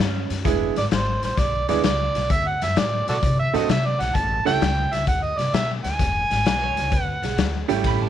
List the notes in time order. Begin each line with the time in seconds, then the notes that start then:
0.00 G2 C#4, snare
0.30 F#2, snare, closed hi-hat
0.45 E1 G#3 B3 D4 E4 G#4, kick, snare, closed hi-hat
0.76 G#1 D5, snare, closed hi-hat
0.91 G#1 C5, snare, closed hi-hat
1.22 A1 C5, snare, closed hi-hat
1.37 B1 D5, kick, snare, closed hi-hat
1.68 D2 G#3 B3 D4 E4 G#4 D5, snare, closed hi-hat
1.84 C#2 D5, snare, closed hi-hat
2.15 B1, snare, closed hi-hat
2.30 D2 E5, kick, closed hi-hat
2.47 F#5
2.61 F#2 E5, snare, closed hi-hat
2.76 A2 D5, snare, closed hi-hat
3.08 B2 F#4 A4 D5, snare, closed hi-hat
3.23 C3, kick, closed hi-hat
3.39 E5
3.53 A2 A3 C4 D4 F#4 A4 D#5, snare, closed hi-hat
3.69 C3 E5, snare, closed hi-hat
3.85 D5
4.00 B1 F#5, snare, closed hi-hat
4.15 A1 A5, kick, closed hi-hat
4.45 C#2 A3 C#4 E4 G4 A4 G5, snare, closed hi-hat
4.61 C#2, snare, closed hi-hat
4.92 C#2 E5, snare, closed hi-hat
5.07 D2 F#5, kick, closed hi-hat
5.22 D#5
5.38 C3 D5, snare, closed hi-hat
5.53 B2 E5, snare, closed hi-hat
5.84 D2 G#5, snare, closed hi-hat
5.99 E1, kick, snare, closed hi-hat
6.30 G#1, snare, closed hi-hat
6.45 B1 B4, snare, closed hi-hat
6.62 C#5
6.76 C#2, snare, closed hi-hat
6.92 D2 B4, kick, closed hi-hat
7.02 F#5
7.22 B1 G#4, snare, closed hi-hat
7.37 D2, snare, closed hi-hat
7.68 G#1 G3 A3 C#4 E4 G4, snare, closed hi-hat
7.84 A1 B5, kick, snare, ride
8.02 A5